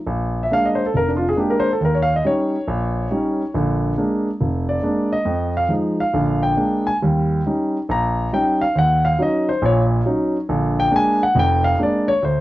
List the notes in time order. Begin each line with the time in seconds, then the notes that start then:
0.07 A#1
0.43 E5
0.51 G#3 A#3 D4 F5
0.65 D#5
0.75 C5
0.86 A4
0.94 F1 A#4
1.08 D4
1.16 F4
1.29 G#4
1.36 G#3 A#3 D4 G4
1.50 A#4
1.60 C5
1.73 A4
1.80 D#2
1.85 A#4
1.95 C#5
2.03 F5
2.16 D#5
2.25 G3 C#4 D#4 C#5
2.68 A#1
3.11 G3 C#4 D#4
3.54 A#1 D3
3.98 G#3 A#3 D4
4.41 F1
4.69 D5
4.83 G#3 A#3 D4
5.13 D#5
5.25 F2
5.57 F5
5.69 F3 G#3 D#4
6.00 F5
6.13 A#1 D3
6.43 G5
6.57 G#3 A#3 D4
6.87 G#5
7.02 D#2 G3
7.46 G3 C#4 D#4
7.89 A#1 A#5
8.33 G3 C#4 D#4 G5
8.61 F5
8.75 D#2 F#5
9.05 F5
9.18 F#3 C#4 D#4 D#5
9.49 C5
9.62 A#1 A#2 C#5
10.06 F#3 C#4 D#4
10.49 A#1 D3
10.79 G5
10.91 G#3 A#3 D4
10.96 G#5
11.23 F#5
11.35 F1 F2
11.39 G5
11.64 F5
11.79 G#3 A#3 D4
11.83 D5
12.08 C#5
12.22 D2 C5